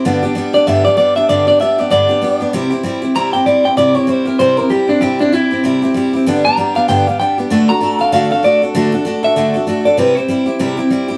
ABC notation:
X:1
M:4/4
L:1/8
Q:"Swing" 1/4=193
K:G
V:1 name="Clean electric guitar"
z3 d e d d e | d d e d d4 | z4 _b g d g | d ^c =c _B c B G D |
G D E2 z4 | z _b2 =f g f g z | z _b2 =f f f d z | z3 e4 d |
B c4 z3 |]
V:2 name="Steel-string acoustic guitar"
[G,,D,G,B,DG] [G,B,DG] [G,B,DG] [G,B,DG] [G,,D,G,B,DG] [G,B,DG] [G,B,DG] [G,B,DG] | [G,,D,G,B,DG] [G,B,DG] [G,B,DG] [G,B,DG] [G,,D,G,B,DG] [G,B,DG] [G,B,DG] [G,B,DG] | [C,G,CEG] [CEG] [G,CEG] [CEG] [C,G,CEG] [CEG] [G,CEG] [CEG] | [C,G,CEG] [CEG] [G,CEG] [CEG] [C,G,CEG] [CEG] [G,CEG] [CEG] |
[C,G,CEG] [CEG] [G,CEG] [CEG] [C,G,CEG] [CEG] [G,CEG] [CEG] | [G,,D,G,B,DG] [G,B,DG] [G,B,DG] [G,B,DG] [G,,D,G,B,DG] [G,B,DG] [G,B,DG] [G,B,DG] | [D,A,DFA] [DFA] [A,DFA] [DFA] [D,A,DFA] [DFA] [A,DFA] [DFA] | [D,A,DFA] [DFA] [A,DFA] [DFA] [D,A,DFA] [DFA] [A,DFA] [DFA] |
[C,G,CEG] [CEG] [G,CEG] [CEG] [C,G,CEG] [CEG] [G,CEG] [CEG] |]